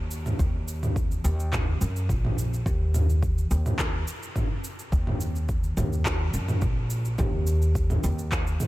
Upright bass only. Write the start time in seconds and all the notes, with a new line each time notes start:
Already playing: D#2
0.39 D#2
1.24 D#2
1.81 F#2
2.09 A#1
2.66 D#2
3.51 D#2
4.92 D#2
5.77 D#2
6.33 F#2
6.62 A#1
7.19 D#2
8.04 D#2